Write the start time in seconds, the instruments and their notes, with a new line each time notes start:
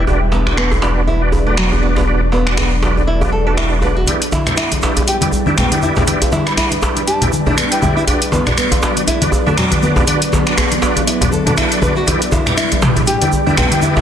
Already playing: ambient pad D4 B4
0.07 sub bass E1, ambient pad F#3 B3 D5, tonewheel organ D4 F#4 B4 D5, djembe tone
0.32 nylon-string guitar B3, djembe slap
0.46 tonewheel organ D4 F#4 B4 D5, finger snap, djembe tone
0.57 nylon-string guitar B3, finger snap
0.71 djembe tone
0.82 tonewheel organ D4 F#4 B4 D5, djembe slap
1.07 nylon-string guitar E4, djembe tone
1.21 tonewheel organ D4 F#4 B4 D5
1.32 djembe tone
1.46 nylon-string guitar A3, tonewheel organ D4 F#4 B4 D5
1.57 nylon-string guitar F#3, finger snap
1.72 tonewheel organ D4 F#4 B4 D5, djembe tone
1.82 nylon-string guitar B3
1.96 nylon-string guitar B3, djembe slap, djembe tone
2.07 tonewheel organ D4 F#4 B4 D5, ambient pad A4
2.32 nylon-string guitar B3, djembe slap, djembe tone
2.47 tonewheel organ D4 F#4 B4 D5, finger snap
2.57 nylon-string guitar B3, finger snap, djembe tone
2.82 tonewheel organ D4 F#4 B4 D5, djembe slap
2.97 djembe tone
3.07 nylon-string guitar E4
3.21 tonewheel organ D4 F#4 B4 D5, djembe tone
3.32 nylon-string guitar A4
3.47 tonewheel organ D4 F#4 B4 D5, nylon-string guitar A4
3.57 nylon-string guitar E4, finger snap, djembe tone
3.82 tonewheel organ D4 F#4 B4 D5, nylon-string guitar B4, djembe tone
3.97 nylon-string guitar F#4
4.07 sub bass E1, ambient pad G3 D4 E4 B4 D5, tonewheel organ E4 G4 B4 D5, closed hi-hat, muted conga, djembe tone, high conga, shaker
4.22 closed hi-hat, shaker
4.32 nylon-string guitar E4, muted conga, djembe slap, djembe tone, high conga, shaker
4.46 sub bass E1, tonewheel organ E4 G4 B4 D5, finger snap, closed hi-hat, low conga, shaker
4.56 nylon-string guitar E4, finger snap, closed hi-hat, shaker
4.72 closed hi-hat, muted conga, djembe tone, shaker
4.82 sub bass E1, tonewheel organ E4 G4 B4 D5, djembe slap, shaker
4.96 closed hi-hat, muted conga, djembe tone, shaker
5.07 nylon-string guitar G4, bansuri G5, closed hi-hat, shaker
5.21 tonewheel organ E4 G4 B4 D5, bansuri G5, closed hi-hat, muted conga, high conga, shaker
5.32 sub bass E1, djembe tone, shaker
5.46 nylon-string guitar D4, tonewheel organ E4 G4 B4 D5, high conga, shaker
5.57 nylon-string guitar B3, bansuri G5, finger snap, closed hi-hat, muted conga, djembe tone, low conga, shaker
5.71 tonewheel organ E4 G4 B4 D5, bansuri G5, closed hi-hat, high conga, shaker
5.82 nylon-string guitar E4, muted conga, high conga, shaker
5.96 nylon-string guitar E4, djembe slap, djembe tone, low conga, shaker
6.07 sub bass E1, tonewheel organ E4 G4 B4 D5, closed hi-hat, muted conga, high conga, shaker
6.22 closed hi-hat, djembe tone, shaker
6.32 nylon-string guitar E4, muted conga, djembe slap, high conga, shaker
6.46 sub bass E1, tonewheel organ E4 G4 B4 D5, bansuri B5, finger snap, closed hi-hat, shaker
6.57 nylon-string guitar E4, bansuri B5, finger snap, closed hi-hat, djembe tone, shaker
6.71 closed hi-hat, muted conga, shaker
6.82 sub bass E1, tonewheel organ E4 G4 B4 D5, djembe slap, djembe tone, shaker
6.96 closed hi-hat, muted conga, shaker
7.07 nylon-string guitar G4, bansuri A5, closed hi-hat, shaker
7.21 tonewheel organ E4 G4 B4 D5, closed hi-hat, muted conga, djembe tone, low conga, shaker
7.32 sub bass E1, high conga, shaker
7.46 nylon-string guitar D4, tonewheel organ E4 G4 B4 D5, djembe tone, high conga, low conga, shaker
7.57 nylon-string guitar B3, finger snap, closed hi-hat, muted conga, shaker
7.71 tonewheel organ E4 G4 B4 D5, bansuri G5, closed hi-hat, shaker
7.82 nylon-string guitar E4, bansuri G5, muted conga, high conga, djembe tone, low conga, shaker
7.97 nylon-string guitar E4, shaker
8.07 sub bass E1, ambient pad F#3 B3, tonewheel organ D4 F#4 B4 D5, closed hi-hat, muted conga, djembe tone, high conga, shaker
8.21 closed hi-hat, shaker
8.32 nylon-string guitar B3, djembe slap, muted conga, high conga, shaker
8.46 sub bass E1, tonewheel organ D4 F#4 B4 D5, finger snap, closed hi-hat, djembe tone, low conga, shaker
8.57 nylon-string guitar B3, finger snap, closed hi-hat, shaker
8.71 closed hi-hat, muted conga, djembe tone, shaker
8.82 sub bass E1, tonewheel organ D4 F#4 B4 D5, djembe slap, shaker
8.96 closed hi-hat, muted conga, shaker
9.07 nylon-string guitar E4, closed hi-hat, djembe tone, shaker
9.22 tonewheel organ D4 F#4 B4 D5, closed hi-hat, muted conga, high conga, shaker
9.32 sub bass E1, djembe tone, shaker
9.46 nylon-string guitar A3, tonewheel organ D4 F#4 B4 D5, high conga, shaker
9.57 nylon-string guitar F#3, finger snap, closed hi-hat, muted conga, low conga, shaker
9.71 tonewheel organ D4 F#4 B4 D5, closed hi-hat, high conga, djembe tone, shaker
9.82 nylon-string guitar B3, muted conga, high conga, shaker
9.96 nylon-string guitar B3, djembe slap, djembe tone, low conga, shaker
10.07 sub bass E1, tonewheel organ D4 F#4 B4 D5, closed hi-hat, muted conga, high conga, shaker
10.22 closed hi-hat, shaker
10.32 nylon-string guitar B3, muted conga, djembe slap, high conga, djembe tone, shaker
10.46 sub bass E1, tonewheel organ D4 F#4 B4 D5, finger snap, closed hi-hat, shaker
10.57 nylon-string guitar B3, finger snap, closed hi-hat, djembe tone, shaker
10.72 closed hi-hat, muted conga, shaker
10.82 sub bass E1, tonewheel organ D4 F#4 B4 D5, djembe slap, shaker
10.96 closed hi-hat, muted conga, djembe tone, shaker
11.07 nylon-string guitar E4, closed hi-hat, shaker
11.21 tonewheel organ D4 F#4 B4 D5, closed hi-hat, muted conga, djembe tone, low conga, shaker
11.32 sub bass E1, nylon-string guitar A4, high conga, shaker
11.46 tonewheel organ D4 F#4 B4 D5, nylon-string guitar A4, closed hi-hat, high conga, low conga, shaker
11.57 nylon-string guitar E4, finger snap, closed hi-hat, djembe tone, shaker
11.70 sub bass B1, closed hi-hat, shaker
11.82 sub bass E2, tonewheel organ D4 F#4 B4 D5, nylon-string guitar B4, muted conga, djembe tone, high conga, low conga, shaker
11.96 nylon-string guitar F#4, shaker
12.07 sub bass E1, ambient pad G3 D4 E4, tonewheel organ E4 G4 B4 D5, closed hi-hat, muted conga, djembe tone, high conga, shaker
12.22 closed hi-hat, shaker
12.32 nylon-string guitar E4, djembe slap, muted conga, djembe tone, high conga, shaker
12.46 sub bass E1, tonewheel organ E4 G4 B4 D5, finger snap, closed hi-hat, low conga, shaker
12.57 nylon-string guitar E4, finger snap, closed hi-hat, shaker
12.71 closed hi-hat, muted conga, djembe tone, shaker
12.82 sub bass E1, tonewheel organ E4 G4 B4 D5, mid tom, djembe slap, shaker
12.96 closed hi-hat, muted conga, djembe tone, shaker
13.06 nylon-string guitar G4, bansuri G5, closed hi-hat, shaker
13.21 tonewheel organ E4 G4 B4 D5, bansuri G5, closed hi-hat, muted conga, high conga, shaker
13.32 sub bass E1, djembe tone, shaker
13.46 nylon-string guitar D4, tonewheel organ E4 G4 B4 D5, high conga, shaker
13.57 nylon-string guitar B3, bansuri G5, finger snap, closed hi-hat, muted conga, djembe tone, low conga, shaker
13.71 tonewheel organ E4 G4 B4 D5, bansuri G5, closed hi-hat, high conga, shaker
13.82 nylon-string guitar E4, muted conga, high conga, shaker
13.96 nylon-string guitar E4, djembe slap, djembe tone, low conga, shaker